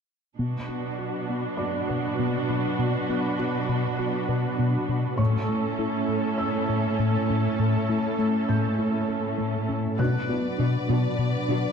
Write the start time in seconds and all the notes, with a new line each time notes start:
0.39 B2 F#3 B3 D4 F#4 B4
0.68 B3 F#4
0.99 B3 F#4
1.29 B2 B3
1.57 B3 F#4 D5 D6
1.89 B2 B4
2.19 B2 B3
2.50 B2 D4
2.79 B2 B3
3.09 B3 F#4
3.39 B3 F#4
3.69 B2 B3
3.99 B3 F#4
4.29 B2 B4
4.59 B2 B3
4.89 B2 D4
5.18 A2 A3 C#4 E4 A4 C#5 C#6
5.49 A3 E4
5.79 A3 E4
6.08 A2 A3
6.38 A3 E4 E6
6.69 A2 A4
6.99 A2 A3
7.29 A2 C#4
7.59 A2 A3
7.89 A3 E4
8.19 A3 E4
8.49 A2 A3 G6
8.79 A3 E4
9.09 A2 A4
9.38 A2 A3
9.69 A2 C#4
9.99 B2 F#3 B3 D4 F#4 B4 D5 F#6
10.29 B2 B3 D4 E4 F#4
10.58 B2 D4 F#4
10.89 B2 B3 D4 F#4
11.19 B2
11.48 B2 D4 F#4